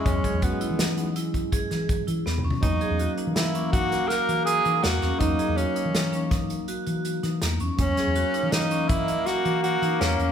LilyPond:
<<
  \new Staff \with { instrumentName = "Tenor saxophone" } { \time 7/4 \key dis \phrygian \tempo 4 = 163 cis'4 b2 r1 | dis'4. r8 e'4 fis'4 ais'4 gis'4 fis'4 | dis'4 cis'2 r1 | cis'2 dis'4 e'4 fis'4 fis'4 cis'4 | }
  \new Staff \with { instrumentName = "Vibraphone" } { \time 7/4 \key dis \phrygian r8 gis'8 fis'8 e'4 dis'8 e'4 gis'8 gis'4 e'8 b8 cis'8 | r8 gis'8 fis'8 dis'4 cis'8 dis'4 fis'8 fis'4 dis'8 ais8 cis'8 | cis'8 gis'8 fis'8 dis'4 cis'8 dis'4 fis'8 fis'4 dis'8 ais8 cis'8 | cis'8 gis'8 fis'8 dis'4 cis'8 dis''4 fis'8 fis'4 dis'8 ais8 cis'8 | }
  \new Staff \with { instrumentName = "Tine electric piano" } { \time 7/4 \key dis \phrygian <fis gis cis'>1.~ <fis gis cis'>4 | <fis ais cis'>1.~ <fis ais cis'>4 | <fis ais dis'>1.~ <fis ais dis'>4 | <fis ais cis'>1.~ <fis ais cis'>4 | }
  \new Staff \with { instrumentName = "Trombone" } { \time 7/4 \key dis \phrygian gis1~ gis4.~ gis16 r4 r16 | ais1.~ ais4~ | ais1.~ ais16 r8. | ais1.~ ais4 | }
  \new Staff \with { instrumentName = "Fingered electric bass" } { \clef bass \time 7/4 \key dis \phrygian e,8 r16 e,8 r8 e16 e2 r8 e4 e8 e,8 e,16 r16 | e,8 r16 e,8 r8 e16 e2 r8 e4 e8 e,8 e,16 r16 | e,8 r16 e,8 r8 e16 e2 r8 e4 e8 e,8 e,16 r16 | e,8 r16 e,8 r8 e16 e2 r8 e4 e8 e,8 e,16 r16 | }
  \new DrumStaff \with { instrumentName = "Drums" } \drummode { \time 7/4 <hh bd>8 <hh bd>8 <hh bd>8 hh8 <hh sn>8 hh8 hh8 <hh bd>8 <hh bd>8 <hh sn>8 <hh bd>8 hh8 \tuplet 3/2 { sn8 toml8 tomfh8 } | <hh bd>8 hh8 hh8 hh8 <hh sn>8 hh8 <hh bd>8 <hh sn>8 <hh sn>8 hh8 hh8 hh8 <hh sn>8 <hh sn>8 | <hh bd>8 hh8 hh8 hh8 <hh sn>8 hh8 <hh bd sn>8 hh8 hh8 hh8 hh8 <hh sn>8 <hh sn>8 hh8 | <hh bd>8 <hh sn>8 hh8 hh8 <hh sn>8 hh8 <hh bd>8 hh8 <hh sn>8 hh8 hh8 hh8 <hh sn>8 hh8 | }
>>